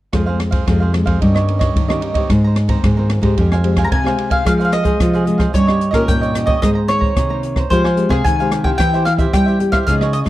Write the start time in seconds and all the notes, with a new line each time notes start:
0.13 F2 F3 G#3 C4 F4 G#4 C5 F5, kick, cross-stick, ride
0.26 F3 G#3 C4 G#4 C5 F5
0.40 muted cavaquinho stroke, cross-stick, ride
0.51 G#4 C5 F5, kick, ride
0.66 F2 C3 F3 G#3 C4 F4 G#4 C5 F5, kick, cross-stick, ride
0.80 G#4 C5 F5
0.93 F3 G#3 C4, muted cavaquinho stroke, cross-stick, ride
1.05 F2 G#4 C5 F5, kick, ride
1.21 G2 D#3 A#3 C#4 D#4 G4 C#5 D#5, kick, ride
1.34 G4 C#5 D#5, cross-stick
1.48 D#3 A#3 C#4, ride
1.59 G4 C#5 D#5, kick, cross-stick, ride
1.76 G2 D#3, kick, ride
1.88 D#3 A#3 C#4 G4 C#5 D#5, cross-stick
2.01 D#4 G4 C#5 D#5, ride
2.14 D#3 A#3 C4 G4 C#5 D#5, kick, ride
2.29 G#2 G#4 C5 A#5, kick, cross-stick, ride
2.44 C5 A#5
2.56 muted cavaquinho stroke, cross-stick, ride
2.68 D#3 A#3 C4 C5 A#5, kick, ride
2.84 G#2 D#3 G#4 C5 A#5, kick, cross-stick, ride
2.97 D#3 A#3 C4 C5 A#5
3.10 muted cavaquinho stroke, cross-stick, ride
3.22 G#2 G#3 C4 G4 C5 A#5, kick, ride
3.37 F2 F3 G4 C5 F5 G#5, kick, ride
3.52 C5 F5 G#5, cross-stick
3.63 G#3 C4 G4, ride
3.77 C5 F5 G#5, kick, cross-stick, ride
3.84 A#5
3.90 C3 G#5, kick, ride
4.03 G#3 C4 G4 F5 G#5, cross-stick
4.07 C5
4.18 G4 C5 F5 G#5, ride
4.30 C5 F5 G#5, kick, ride
4.45 F3 G#3 C4 F4 G#4 C5 F5, kick, cross-stick, closed hi-hat
4.60 G#4 C5 F5, closed hi-hat
4.65 F5
4.72 D#5, muted cavaquinho stroke, cross-stick, closed hi-hat
4.83 G#3 C4 G#4 C5 F5, kick, closed hi-hat
5.00 C3 F3 F4 G#4 C5 F5, kick, cross-stick, closed hi-hat
5.13 G#4 C5 F5, closed hi-hat
5.25 G#3 C4 G#4, muted cavaquinho stroke, closed hi-hat
5.38 G#4 C5 F5, kick, cross-stick, closed hi-hat
5.53 G2 D#3 G3 A#3 C#4 D#4 G4 C#5 D#5, kick, closed hi-hat
5.67 G4 C#5 D#5, cross-stick
5.81 closed hi-hat
5.91 A#2 D#3 A#3 C#4 G4 A#4 C#5 D#5, kick, cross-stick, closed hi-hat
6.08 G2 A#2 G5, kick, closed hi-hat
6.21 G4 C#5 D#5, closed hi-hat
6.33 D#3 A#3 C#4 D#4 G4 C#5 D#5, cross-stick, closed hi-hat
6.46 G4 C#5 D#5, kick
6.62 G#2 D#3 G#3 A#3 C4 G#4 C5 D#5 A#5, kick, cross-stick, closed hi-hat
6.75 C5 A#5
6.88 D#3 A#3 C4 C#5, muted cavaquinho stroke, cross-stick, closed hi-hat
7.01 C5 A#5, kick
7.15 C3 D#3 G#4 C5 A#5, kick, cross-stick, closed hi-hat
7.29 D#3 A#3 C5 A#5
7.43 muted cavaquinho stroke, closed hi-hat
7.56 C5 A#5, kick, cross-stick
7.69 F3 G#3 C4 G4 C5 F5, kick, closed hi-hat
7.73 G#5
7.84 C5 F5 G#5, cross-stick
7.96 G#3 C4 G4, closed hi-hat
8.09 C3 G#4 C5 F5 G#5, kick, cross-stick
8.24 C3 D#3 G#5, kick, closed hi-hat
8.39 G#3 C4 G4 C5 F5 G#5, closed hi-hat
8.51 G4 C5 F5 G#5, cross-stick, closed hi-hat
8.63 C4 E4 G4 C5 F5 G5 G#5, kick
8.78 E3 E4 G4 C5 E5 G5, kick, cross-stick, closed hi-hat
8.93 G4 C5 E5, closed hi-hat
9.05 F5, muted cavaquinho stroke, cross-stick, closed hi-hat
9.18 C4 E4 G4 C5 E5, kick, closed hi-hat
9.33 E3 G3 E4 G4 C5 E5 G5, kick, cross-stick, closed hi-hat
9.46 G4 C5 E5, closed hi-hat
9.59 C4 E4 G4, muted cavaquinho stroke, closed hi-hat
9.72 G4 C5 E5 F5, kick, cross-stick, closed hi-hat
9.87 C#3 F3 G#3 D#4 F4 G#4 C#5 D#5 F5, kick, closed hi-hat
10.01 G#4 C#5 D#5, cross-stick
10.13 D#5, closed hi-hat
10.25 G#2 F3 G#3, cross-stick, closed hi-hat